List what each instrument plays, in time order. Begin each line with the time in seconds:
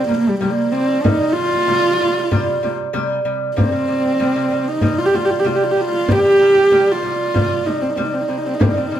0.06 lute C3 G3, horsehead fiddle A#3
0.11 frame drum
0.17 horsehead fiddle A#3
0.26 horsehead fiddle G3, frame drum
0.40 lute C3 G3, horsehead fiddle G3, frame drum
0.50 horsehead fiddle A#3
0.72 lute C3 G3, horsehead fiddle C4
1.03 lute C3 G3, horsehead fiddle D#4, frame drum
1.20 lute C3 G3
1.33 lute C3 G3, horsehead fiddle F4
1.52 frame drum
1.67 lute C3 G3, frame drum
1.83 lute C3 G3
2.00 lute C3 G3, frame drum
2.31 lute C3 G3, frame drum
2.63 lute C3 G3, frame drum
2.80 frame drum
2.93 lute C3 G3, frame drum
3.25 lute C3 G3
3.56 lute C3 G3, horsehead fiddle C4, frame drum
3.72 lute C3 G3
3.88 lute C3 G3
4.04 frame drum
4.20 lute C3 G3, frame drum
4.36 lute C3 G3
4.50 lute C3 G3, frame drum
4.68 horsehead fiddle D#4
4.81 lute C3 G3, frame drum
4.99 horsehead fiddle F4
5.06 horsehead fiddle G4
5.13 lute C3 G3, horsehead fiddle F4, frame drum
5.25 horsehead fiddle G4
5.30 horsehead fiddle F4, frame drum
5.40 horsehead fiddle G4
5.44 lute C3 G3, horsehead fiddle F4, frame drum
5.55 horsehead fiddle G4
5.64 horsehead fiddle F4
5.71 horsehead fiddle G4
5.77 lute C3 G3
5.81 horsehead fiddle F4
6.08 lute C3 G3, horsehead fiddle G4, frame drum
6.24 lute C3 G3
6.40 lute C3 G3
6.55 frame drum
6.72 lute C3 G3, frame drum
6.86 lute C3 G3
6.91 horsehead fiddle F4
7.03 lute C3 G3, frame drum
7.34 lute C3 G3, frame drum
7.66 lute C3 G3, horsehead fiddle D#4, frame drum
7.82 horsehead fiddle C4, frame drum
7.90 horsehead fiddle D#4
7.96 lute C3 G3, horsehead fiddle C4, frame drum
8.04 horsehead fiddle D#4
8.13 horsehead fiddle C4
8.21 horsehead fiddle D#4
8.28 lute C3 G3, horsehead fiddle C4
8.38 horsehead fiddle D#4
8.46 horsehead fiddle C4
8.54 horsehead fiddle D#4
8.59 lute C3 G3, horsehead fiddle C4, frame drum
8.70 horsehead fiddle D#4
8.76 lute C3 G3, horsehead fiddle C4
8.87 horsehead fiddle D#4
8.91 lute C3 G3, horsehead fiddle C4